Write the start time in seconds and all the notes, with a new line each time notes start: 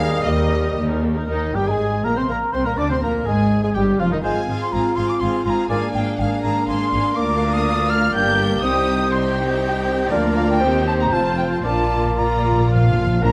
Already playing: D#2 G3 A#3 G4 G#4 A#4 D#5 F5
0.11 D#4 A#4
0.25 D#2 A#3 G4 A4 D#5
0.30 G4
0.38 D#4 A#4
0.51 A#3 G4
0.64 D#4 A#4
0.77 D#2 A#3 G4
0.90 D#4 A#4
1.03 A#3 G4
1.16 D#4 A#4
1.29 D#2 D#3 D#4 D#5
1.54 G1 G2 G3 G4 G5
1.67 G#1 G#2 G#3 G#4 G#5 A#5
2.04 A#1 A#2 A#3 A#4 A#5
2.16 C3 C4 C5 C6
2.27 A#1 A#2 A#3 A#4 A#5 C6
2.31 A#4 A#5
2.52 C2 C3 C4 C5 C6
2.65 A#2 A#3 A#4 A#5
2.77 D2 D3 D4 D5 D6
2.89 C3 C4 C5 C6
3.01 A#1 A#2 A#3 A#4 A#5
3.25 G#1 G#2 G#3 G#4 G#5
3.63 G#2 G#3 G#4 G#5
3.75 G1 G2 G3 G4 G5
4.00 F1 F2 F3 F4 F5
4.12 D#2 D#3 D#4 D#5
4.24 G#1 G#2 G#3 C4 F4 G#4 C5 F5 G#5
4.48 G#1 G#2 C4 F4 G#4 F5
4.60 C6
4.72 G#1 G#2 C4 F4 G#4 F5 A#5
4.96 G#1 G#2 C4 F4 G#4 F5 C6
5.08 D6
5.20 G#1 G#2 C4 F4 G#4 F5 C6
5.44 G#1 G#2 C4 F4 G#4 F5 A#5 C6
5.50 A#5
5.69 G#1 G#2 A#3 D4 F4 G#4 D5 F5 G#5
5.93 G#1 G#2 A#3 D4 G#4 F5 G5
6.17 G#1 G#2 A#3 D4 G#4 F5 G5
6.22 F5
6.42 G#1 G#2 A#3 D4 G#4 F5 A#5
6.67 G#1 G#2 A#3 D4 G#4 F5 C6
6.92 G#1 G#2 A#3 D4 G#4 F5
7.16 D2 A#3 D4 F4 A#4 D5 F5 D6
7.53 D#6
7.90 F6
8.14 G1 G2 A#3 D4 G4 G5 G6
8.63 C2 G3 C4 D#4 G4 C5 G5 D#6
9.11 C4 D#4 G4 G5 C6
10.11 D2 F3 A#3 D4 F4 A#4 D5
10.37 F5
10.49 G5
10.61 D#2 G3 C4 D#4 G4 C5
10.87 A5
11.00 A#5
11.11 F1 F2 F3 C4 F4 C5 A5
11.38 G5
11.51 A5
11.64 A#1 A#2 F3 A#3 D4 F4 D5 A5
11.73 A#2
11.81 A#2
11.88 A#2
11.97 A#2
12.04 A#2
12.18 A#2 A#3 F4 D5 A#5
12.28 A#2
12.36 A#2
12.43 A#2
12.51 A#2
12.60 A#2
12.68 A#2 F3 F4 F5
12.75 A#2
12.83 A#2
12.91 A#2
12.99 A#2
13.07 A#2
13.15 A#2
13.22 A#1 A#2 F3 A#3 D4 F4 A#4 A#5